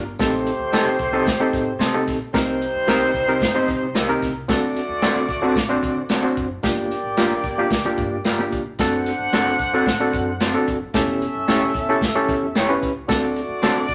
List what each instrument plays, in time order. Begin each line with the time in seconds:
Already playing: upright bass G1
0.19 upright bass A1, horn section A3 G4 C5, reed electric piano C4 D#4 G4 A4, kick, snare, closed hi-hat, tambourine
0.47 closed hi-hat
0.59 upright bass D2
0.73 reed electric piano C4 D#4 G4 A4, clean electric guitar C4 G4 A4 D#5, snare, closed hi-hat, tambourine
0.99 upright bass C2, kick, closed hi-hat
1.13 reed electric piano C4 D#4 G4 A4, clean electric guitar C4 G4 A4 D#5
1.26 upright bass D#2, kick, snare, closed hi-hat, tambourine
1.40 reed electric piano C4 D#4 G4 A4
1.53 upright bass A2, kick, closed hi-hat
1.79 upright bass C3, clean electric guitar C4 G4 A4 D#5, snare, closed hi-hat, tambourine
1.94 reed electric piano C4 D#4 G4 A4
2.07 upright bass A#1, kick, snare, closed hi-hat
2.34 upright bass C2, horn section G3 D#4 C5, reed electric piano C4 D#4 G4 A#4, kick, snare, closed hi-hat, tambourine
2.62 closed hi-hat
2.74 upright bass D2
2.87 upright bass C2, reed electric piano C4 D#4 G4 A#4, clean electric guitar D#4 G4 A#4 D#5, snare, closed hi-hat, tambourine
3.14 upright bass C2, kick, closed hi-hat
3.28 reed electric piano C4 D#4 G4 A#4
3.41 upright bass G1, kick, snare, closed hi-hat, tambourine
3.55 reed electric piano C4 D#4 G4 C5
3.68 upright bass C3, kick, closed hi-hat
3.94 upright bass C2, clean electric guitar D#4 G4 A#4 D#5, snare, closed hi-hat, tambourine
4.09 reed electric piano C4 D#4 G4 A#4
4.22 upright bass C2, kick, snare, closed hi-hat
4.48 upright bass D2, horn section A3 F#4 D5, reed electric piano C4 D4 F#4 A4, kick, snare, closed hi-hat, tambourine
4.76 closed hi-hat
4.89 upright bass D#2
5.02 upright bass D2, reed electric piano C4 D4 F#4 A4, clean electric guitar C4 F#4 A4 D5, snare, closed hi-hat, tambourine
5.29 upright bass D2, kick, closed hi-hat
5.42 reed electric piano C4 D4 F#4 A4, clean electric guitar C4 F#4 A4 D5
5.55 upright bass A1, kick, snare, closed hi-hat, tambourine
5.69 reed electric piano C4 D4 F#4 C5
5.83 upright bass D3, kick, closed hi-hat
6.09 upright bass D2, clean electric guitar C4 F#4 A4 D5, snare, closed hi-hat, tambourine
6.23 reed electric piano C4 D4 F#4 C5
6.37 upright bass F#1, kick, closed hi-hat
6.63 upright bass G1, reed electric piano A#3 D4 F4 G4, horn section A#3 G4 D5, kick, snare, closed hi-hat, tambourine
6.91 closed hi-hat
7.03 upright bass A1
7.17 upright bass G1, reed electric piano A#3 D4 F4 G4, clean electric guitar A#3 F4 G4 D5, snare, closed hi-hat, tambourine
7.44 upright bass G1, kick, closed hi-hat
7.58 reed electric piano A#3 D4 F4 G4
7.71 upright bass D2, kick, snare, closed hi-hat, tambourine
7.85 reed electric piano A#3 D4 F4 G4
7.98 upright bass G2, kick, closed hi-hat
8.25 upright bass G1, clean electric guitar A#3 F4 G4 D5, snare, closed hi-hat, tambourine
8.39 reed electric piano A#3 D4 F4 G4
8.52 upright bass D#1, kick, closed hi-hat
8.78 upright bass F#1, reed electric piano C4 D4 F#4 A4, horn section D4 C5 F#5, kick, snare, closed hi-hat, tambourine
9.06 closed hi-hat
9.19 upright bass G1
9.32 upright bass F#1, clean electric guitar C4 F#4 A4 D5, reed electric piano C4 D4 F#4 A4, snare, closed hi-hat, tambourine
9.59 upright bass F#1, kick, closed hi-hat
9.73 reed electric piano C4 D4 F#4 A4, clean electric guitar C4 F#4 A4 D5
9.86 upright bass A1, kick, snare, closed hi-hat, tambourine
10.00 reed electric piano C4 D4 F#4 A4
10.13 upright bass F#2, kick, closed hi-hat
10.40 clean electric guitar C4 F#4 A4 D5, snare, closed hi-hat, tambourine
10.54 reed electric piano C4 D4 F#4 A4
10.68 upright bass F#1, kick, closed hi-hat
10.94 upright bass E1, horn section C#4 A4 E5, reed electric piano C#4 E4 G4 A4, kick, snare, closed hi-hat, tambourine
11.22 closed hi-hat
11.35 upright bass F#1
11.48 upright bass E1, clean electric guitar A3 E4 G4 C#5, reed electric piano C#4 E4 G4 A4, snare, closed hi-hat, tambourine
11.74 upright bass E1, kick, closed hi-hat
11.89 reed electric piano C#4 E4 G4 A4
12.01 upright bass E2, kick, snare, closed hi-hat, tambourine
12.15 reed electric piano C#4 E4 G4 A4
12.28 upright bass E2, kick, closed hi-hat
12.55 upright bass E1, clean electric guitar A3 E4 G4 C#5, snare, closed hi-hat, tambourine
12.69 reed electric piano C#4 E4 G4 B4
12.83 upright bass C#2, kick, closed hi-hat
13.07 upright bass D2, horn section A3 F#4 D5, reed electric piano C4 D4 F#4 A4, kick, snare, closed hi-hat, tambourine
13.36 closed hi-hat
13.48 upright bass D#2
13.62 upright bass D2, clean electric guitar C4 F#4 A4 D5, reed electric piano C4 D4 F#4 A4, snare, closed hi-hat, tambourine
13.89 upright bass D2, kick, closed hi-hat